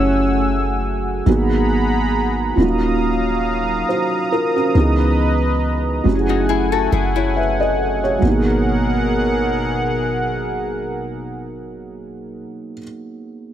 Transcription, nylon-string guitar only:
6.29 6.48 D#4 medium
6.29 6.48 F#4 medium
6.49 6.71 E4 medium
6.49 6.71 G#4 medium
6.72 6.91 F#4 medium
6.72 6.91 A4 medium
6.92 7.14 E4 medium
6.92 7.14 G#4 medium
7.16 8.19 C#4 medium
7.16 8.18 E4 medium

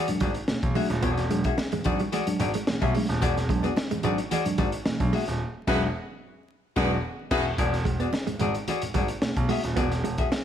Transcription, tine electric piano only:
0.08 0.22 F#3 medium
0.08 0.20 G#3 medium
0.08 0.20 D4 medium
0.21 0.27 G#3 soft
0.21 0.27 D4 soft
0.49 0.54 G#3 soft
0.49 0.54 D4 soft
0.63 0.77 E3 medium
0.75 0.91 F#3 medium
0.75 0.92 G#3 medium
0.75 0.92 D4 medium
1.03 1.19 E3 medium
1.30 1.46 F#3 medium
1.30 1.43 G#3 medium
1.30 1.43 D4 loud
1.58 1.64 G#3 soft
1.58 1.64 D4 soft
1.72 1.86 E3 medium
1.85 2.01 F#3 medium
1.85 2.01 G#3 medium
1.85 2.01 D4 medium
2.12 2.28 E3 medium
2.27 2.41 F#3 medium
2.27 2.39 G#3 medium
2.27 2.39 D4 loud
2.40 2.46 G#3 soft
2.40 2.46 D4 soft
2.67 2.83 E3 medium
2.94 3.10 F#3 medium
2.94 3.08 G#3 medium
2.94 3.08 D4 medium
3.09 3.14 G#3 soft
3.09 3.14 D4 soft
3.22 3.38 E3 medium
3.49 3.65 F#3 medium
3.49 3.63 G#3 medium
3.49 3.63 D4 loud
3.64 3.69 G#3 soft
3.64 3.69 D4 soft
3.76 3.82 G#3 soft
3.76 3.82 D4 soft
3.91 4.05 E3 medium
4.03 4.19 F#3 medium
4.03 4.19 G#3 medium
4.03 4.19 D4 loud
4.31 4.47 E3 medium
4.45 4.60 F#3 medium
4.45 4.57 G#3 medium
4.45 4.57 D4 loud
4.59 4.64 G#3 soft
4.59 4.64 D4 soft
4.86 5.01 E3 medium
5.00 5.14 F#3 medium
5.00 5.12 G#3 medium
5.00 5.12 D4 medium
5.13 5.19 G#3 soft
5.13 5.19 D4 soft
5.67 5.86 F#3 medium
5.67 5.86 G#3 loud
5.67 5.87 D4 loud
6.76 6.95 F#3 medium
6.76 6.95 G#3 loud
6.76 6.96 D4 loud

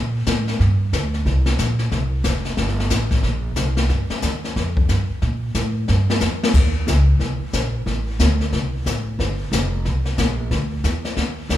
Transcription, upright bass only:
0.00 0.25 A#2 medium
0.27 0.59 A2 medium
0.60 0.92 G2 medium
0.93 1.25 D2 medium
1.26 1.58 C2 medium
1.59 1.91 A#1 medium
1.92 2.24 C2 medium
2.24 2.56 F1 medium
2.57 2.89 G1 medium
2.90 3.22 A1 medium
3.23 3.55 A#1 medium
3.56 3.88 C2 medium
3.89 4.09 G2 medium
4.10 muted upright bass stroke soft
4.23 4.55 D#2 medium
4.56 4.88 F2 medium
4.89 5.08 G2 medium
5.10 muted upright bass stroke soft
5.22 5.54 A#2 medium
5.55 5.87 A2 medium
5.89 6.21 G2 medium
6.21 6.53 F2 medium
6.54 6.86 D#2 medium
6.87 7.19 C#2 medium
7.19 7.39 C2 medium
7.40 muted upright bass stroke soft
7.53 7.85 A#1 medium
7.86 8.18 A1 medium
8.19 8.51 D2 medium
8.53 8.85 C2 medium
8.86 9.18 A1 medium
9.19 9.51 G1 medium
9.52 9.84 F1 medium
9.85 10.17 C2 medium
10.18 10.50 A#1 medium
10.51 10.83 D2 medium
10.84 11.16 E2 medium
11.17 11.49 D#2 medium
11.49 11.57 D2 medium

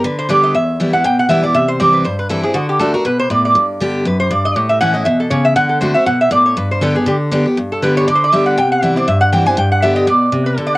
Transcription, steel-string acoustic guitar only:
0.04 0.28 D3 medium
0.29 0.53 D3 medium
0.29 0.53 G3 medium
0.29 0.53 B3 medium
0.29 0.54 G4 medium
0.54 1.02 E2 medium
0.80 0.93 E3 medium
0.80 0.93 G3 medium
0.80 0.93 B3 medium
0.80 0.92 E4 medium
0.93 1.05 B3 soft
0.93 1.04 E4 medium
1.04 1.52 B2 medium
1.29 1.43 E3 medium
1.29 1.43 G3 medium
1.29 1.43 B3 loud
1.29 1.42 E4 loud
1.43 1.55 B3 medium
1.43 1.54 E4 medium
1.54 2.03 C3 medium
1.80 2.04 E3 medium
1.80 2.04 G3 loud
1.80 2.04 C4 loud
1.80 2.05 E4 medium
2.05 2.53 G2 loud
2.29 2.43 E3 medium
2.29 2.43 G3 medium
2.29 2.44 C4 loud
2.29 2.42 E4 loud
2.43 2.56 C4 soft
2.43 2.55 E4 medium
2.54 2.78 D3 loud
2.79 2.93 D3 medium
2.79 2.94 A3 medium
2.79 2.94 D4 loud
2.79 2.93 F#4 loud
2.94 3.06 D4 soft
2.94 3.05 F#4 medium
3.05 3.29 B2 medium
3.30 3.54 A2 medium
3.55 4.04 G2 loud
3.81 4.05 D3 medium
3.81 4.05 G3 medium
3.81 4.05 B3 medium
3.81 4.05 G4 loud
4.05 4.30 F#2 loud
4.31 4.55 G2 loud
4.56 5.04 A2 medium
4.81 4.94 E3 medium
4.81 4.95 A3 loud
4.81 4.95 C#4 medium
4.81 4.93 E4 loud
4.95 5.06 C#4 medium
4.95 5.06 E4 medium
5.06 5.30 B2 loud
5.31 5.55 C#3 loud
5.56 5.80 D3 loud
5.81 5.94 D3 medium
5.81 5.95 A3 medium
5.81 5.95 C4 medium
5.81 5.94 F#4 medium
5.95 6.07 C4 soft
5.95 6.06 F#4 medium
6.06 6.30 B2 medium
6.31 6.55 A2 loud
6.57 7.05 G2 loud
6.81 6.95 D3 medium
6.81 6.95 G3 loud
6.81 6.95 B3 loud
6.81 6.93 G4 medium
6.95 7.07 B3 soft
6.95 7.06 G4 medium
7.06 7.30 D3 loud
7.31 7.45 D3 loud
7.31 7.45 G3 loud
7.31 7.45 B3 loud
7.31 7.45 G4 loud
7.46 7.57 B3 soft
7.46 7.57 G4 medium
7.57 8.05 G2 medium
7.82 8.06 D3 medium
7.82 8.06 G3 medium
7.82 8.07 B3 loud
7.82 8.07 G4 loud
8.08 8.31 D3 loud
8.33 8.56 D3 medium
8.33 8.57 G3 loud
8.33 8.57 B3 loud
8.33 8.57 G4 medium
8.58 9.05 C3 loud
8.82 8.96 E3 medium
8.82 8.96 G3 medium
8.82 8.96 C4 medium
8.82 8.95 E4 loud
8.96 9.08 C4 soft
8.96 9.07 E4 medium
9.08 9.55 G2 loud
9.32 9.46 E3 medium
9.32 9.46 G3 medium
9.32 9.46 C4 loud
9.32 9.45 E4 loud
9.46 9.58 C4 medium
9.46 9.57 E4 medium
9.57 10.05 G2 loud
9.82 10.06 D3 medium
9.82 10.07 G3 medium
9.82 10.07 B3 loud
9.82 10.07 G4 medium
10.07 10.31 B2 medium
10.32 10.56 C3 loud
10.58 10.78 D3 medium

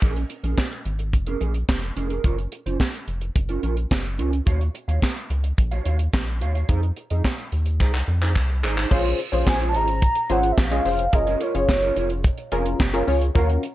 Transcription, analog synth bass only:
0.02 0.25 A#1 loud
0.44 0.55 A#1 loud
0.85 1.15 G#1 medium
1.13 1.36 F1 medium
1.41 1.63 A#1 loud
1.69 1.91 F1 medium
1.96 2.19 F1 medium
2.24 2.47 F#1 loud
2.66 2.77 F#1 loud
3.08 3.30 F1 medium
3.36 3.58 F#1 loud
3.63 3.86 A#1 medium
3.91 4.20 F#1 loud
4.19 4.41 C#2 medium
4.47 4.69 D#2 loud
4.88 4.99 D#2 loud
5.30 5.52 C#2 medium
5.58 5.80 A#1 loud
5.86 6.08 D#2 medium
6.13 6.43 A#1 medium
6.41 6.64 D#2 medium
6.69 6.91 F2 loud
7.11 7.22 F2 medium
7.52 7.82 D#2 medium
7.80 8.03 C2 medium
8.08 8.37 F2 loud
8.36 8.64 C2 loud
8.63 8.86 G#1 medium
8.91 9.14 A#1 loud
9.33 9.44 A#1 loud
9.47 9.76 A#1 medium
9.74 10.08 G#1 medium
10.30 10.52 G#1 medium
10.58 10.80 A#1 loud
10.85 11.08 F1 medium
11.13 11.36 F#1 loud
11.55 11.66 F#1 loud
11.68 11.91 F#1 loud
11.96 12.30 F1 loud
12.52 12.75 F1 loud
12.80 13.02 F#1 loud
13.08 13.30 C#2 medium
13.35 13.58 D#2 loud

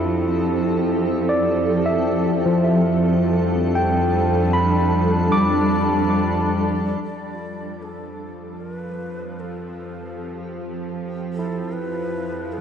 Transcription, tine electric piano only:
0.00 2.98 E4 medium
1.29 2.03 D5 medium
1.86 4.98 E5 medium
2.46 5.57 F3 medium
3.75 4.68 G5 medium
4.53 5.46 B5 medium
5.32 8.43 D6 medium
7.34 10.46 F4 soft
11.39 12.61 E4 medium

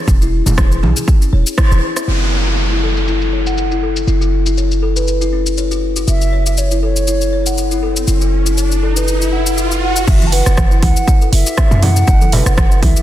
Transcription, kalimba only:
0.08 0.20 C#4 medium
0.21 0.32 E4 medium
0.47 0.53 C#4 medium
0.58 0.70 G#4 medium
0.83 0.90 G#4 medium
0.96 1.06 G#4 medium
1.21 1.27 C#4 medium
1.33 1.45 C#5 medium
1.58 1.70 E4 medium
1.72 1.78 G#4 medium
1.97 2.07 E5 medium
2.08 2.20 F#4 medium
2.33 2.40 C#5 medium
2.47 2.57 F#4 medium
2.72 2.82 E4 medium
2.83 2.90 A4 medium
3.08 3.20 E4 medium
3.33 3.40 C#5 medium
3.47 3.57 F#5 medium
3.72 3.82 E4 medium
3.83 3.90 A4 medium
4.08 4.20 E4 medium
4.21 4.31 F#4 medium
4.46 4.52 E4 medium
4.58 4.70 C#5 medium
4.82 4.90 A4 medium
4.96 5.06 B4 medium
5.21 5.27 E4 medium
5.33 5.46 C#4 medium
5.58 5.70 C#5 medium
5.71 5.77 F#4 medium
5.96 6.06 F#4 medium
6.08 6.20 F#4 medium
6.33 6.40 C#5 medium
6.46 6.57 F#4 medium
6.71 6.82 E4 medium
6.83 6.90 A4 medium
7.08 7.20 E4 medium
7.33 7.40 C#5 medium
7.46 7.57 F#5 medium
7.71 7.82 E4 medium
7.83 7.90 A4 medium
8.08 8.20 E4 medium
8.21 8.31 F#4 medium
8.46 8.52 E4 medium
8.57 8.70 C#5 medium
8.83 8.90 A4 medium
8.96 9.07 B4 medium
9.21 9.27 E4 medium
9.33 9.45 F#5 medium
9.46 9.52 F#5 medium
9.58 9.70 F#4 medium
9.71 9.81 F#4 medium
9.96 10.07 E5 medium
10.07 10.20 F#4 medium
10.32 10.46 B4 loud
10.46 10.57 F#4 medium
10.71 10.81 E4 medium
10.83 10.90 E4 medium
11.08 11.21 C#5 medium
11.21 11.32 A4 medium
11.46 11.57 F#4 medium
11.83 11.90 E4 medium
11.96 12.02 C#4 medium
12.21 12.32 A4 medium
12.33 12.45 B4 medium
12.83 12.90 E4 medium
12.96 13.02 F#4 medium

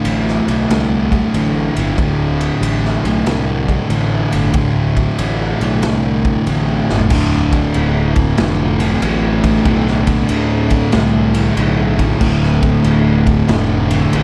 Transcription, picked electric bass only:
0.05 0.39 A1 medium
0.48 0.65 B1 medium
0.70 1.21 C2 loud
1.34 1.68 A1 loud
1.76 1.93 G1 medium
1.98 2.49 D1 loud
2.61 2.95 A1 loud
3.03 3.21 B1 medium
3.26 3.77 C2 medium
3.90 4.24 A1 loud
4.33 4.50 G1 medium
4.54 5.05 D1 medium
5.19 5.52 A1 medium
5.61 5.78 B1 medium
5.82 6.33 C2 medium
6.47 6.80 A1 loud
6.90 7.07 G1 medium
7.11 7.67 D1 loud
7.75 8.31 D1 loud
8.39 8.95 F1 loud
9.02 9.59 A1 loud
9.65 10.22 B1 loud
10.30 10.87 D2 medium
10.94 11.50 C2 medium
11.57 12.14 B1 medium
12.21 12.78 D1 loud
12.84 13.41 D1 loud
13.48 14.05 F1 loud
14.13 14.23 A1 loud

